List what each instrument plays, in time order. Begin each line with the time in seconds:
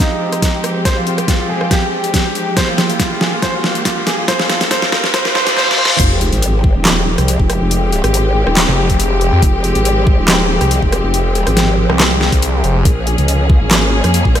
Already playing: string section F3 G#3 C4 G4, riser
0.00 grand piano D#4
0.32 cross-stick, closed hi-hat
0.42 kick, snare, closed hi-hat
0.64 cross-stick, closed hi-hat
0.85 grand piano C5, kick, snare, closed hi-hat
0.97 grand piano F4
1.07 grand piano F4, closed hi-hat
1.18 cross-stick, closed hi-hat
1.28 grand piano F4, kick, snare, closed hi-hat
1.40 grand piano F4
1.50 grand piano G#4
1.61 grand piano F4, cross-stick
1.71 grand piano G4, kick, snare, closed hi-hat
2.04 closed hi-hat
2.14 kick, snare, closed hi-hat
2.35 closed hi-hat
2.57 string section A#3, grand piano C5, kick, snare, closed hi-hat
2.68 grand piano F4
2.78 grand piano F4, snare, closed hi-hat
2.90 closed hi-hat
3.00 grand piano F4, kick, snare, closed hi-hat
3.11 grand piano F4
3.21 grand piano G#4, snare
3.33 grand piano F4
3.42 grand piano C5, kick, snare, closed hi-hat
3.54 grand piano F4
3.64 grand piano F4, snare
3.75 closed hi-hat
3.85 grand piano F4, kick, snare, closed hi-hat
3.97 grand piano F4
4.07 grand piano G#4, snare, closed hi-hat
4.18 grand piano F4
4.28 grand piano C5, kick, snare, closed hi-hat
4.40 grand piano F4, snare
4.50 grand piano F4, snare, closed hi-hat
4.61 snare, closed hi-hat
4.71 grand piano C5, kick, snare, closed hi-hat
4.82 grand piano F4, snare
4.92 grand piano F4, snare
5.04 snare
5.14 grand piano C5, kick, snare, closed hi-hat, reverse cymbal
5.25 grand piano F4, snare
5.35 grand piano C5, snare
5.47 grand piano F4, snare, closed hi-hat
5.57 grand piano C5, snare
5.68 grand piano F4, snare
5.78 grand piano C5
5.85 snare
5.90 grand piano F4
5.99 wobble bass F1, string section F3 G#3 C4 G4, kick, closed hi-hat, crash, sub drop
6.21 closed hi-hat
6.32 wobble bass G#1, closed hi-hat
6.42 closed hi-hat
6.64 kick
6.75 wobble bass D#1
6.85 snare, clap, closed hi-hat
7.18 wobble bass C2, cross-stick, closed hi-hat
7.28 closed hi-hat
7.40 wobble bass F1, kick
7.50 cross-stick, closed hi-hat
7.61 wobble bass F1
7.71 closed hi-hat
7.92 closed hi-hat
8.04 wobble bass G#1, cross-stick, closed hi-hat
8.14 closed hi-hat
8.47 wobble bass D#1, cross-stick
8.57 snare, clap, closed hi-hat
8.68 detuned saw bass F1
8.90 kick, closed hi-hat
9.00 closed hi-hat
9.21 closed hi-hat
9.32 detuned saw bass F2
9.42 wobble bass F1, kick, closed hi-hat
9.64 closed hi-hat
9.75 wobble bass G#1, closed hi-hat
9.85 closed hi-hat
10.07 kick
10.18 wobble bass D#1
10.28 snare, clap, closed hi-hat
10.61 wobble bass C2, cross-stick, closed hi-hat
10.71 closed hi-hat
10.82 wobble bass F1, kick
10.92 cross-stick, closed hi-hat
11.04 wobble bass F1
11.14 closed hi-hat
11.35 closed hi-hat
11.47 wobble bass G#1, cross-stick, closed hi-hat
11.57 snare, closed hi-hat
11.89 detuned saw bass C2, cross-stick
12.00 snare, clap, closed hi-hat
12.21 snare
12.32 detuned saw bass C2, kick, closed hi-hat
12.42 closed hi-hat
12.64 detuned saw bass F1, closed hi-hat
12.85 wobble bass A#1, string section F3 A#3 C#4 G#4, kick, closed hi-hat
13.07 closed hi-hat
13.18 wobble bass C#2, closed hi-hat
13.28 closed hi-hat
13.50 kick
13.61 wobble bass G#1
13.71 snare, clap, closed hi-hat
14.04 wobble bass F2, cross-stick, closed hi-hat
14.14 closed hi-hat
14.25 wobble bass A#1, kick
14.35 cross-stick, closed hi-hat